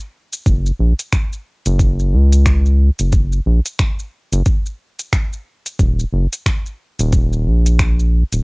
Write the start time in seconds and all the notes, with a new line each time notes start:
0.33 shaker
0.46 F#1, kick, closed hi-hat, shaker
0.66 shaker
0.79 A#1
0.99 closed hi-hat, shaker
1.13 finger snap, kick, closed hi-hat, shaker
1.33 shaker
1.66 F#1, closed hi-hat, shaker
1.79 kick, closed hi-hat, shaker
1.99 shaker
2.13 C#2
2.33 closed hi-hat, shaker
2.46 finger snap, kick, closed hi-hat, shaker
2.66 shaker
2.99 F#1, closed hi-hat, shaker
3.12 kick, closed hi-hat, shaker
3.32 shaker
3.46 A#1
3.66 closed hi-hat, shaker
3.79 finger snap, kick, closed hi-hat, shaker
3.99 shaker
4.32 F#1, closed hi-hat, shaker
4.46 kick, closed hi-hat, shaker
4.66 shaker
4.99 closed hi-hat, shaker
5.13 finger snap, kick, closed hi-hat, shaker
5.33 shaker
5.66 closed hi-hat, shaker
5.79 D#1, kick, closed hi-hat, shaker
6.00 shaker
6.13 F#1
6.33 closed hi-hat, shaker
6.46 finger snap, kick, closed hi-hat, shaker
6.66 shaker
6.99 D#1, closed hi-hat, shaker
7.13 kick, closed hi-hat, shaker
7.33 shaker
7.46 A#1
7.66 closed hi-hat, shaker
7.79 finger snap, kick, closed hi-hat, shaker
7.99 shaker
8.32 D#1, closed hi-hat, shaker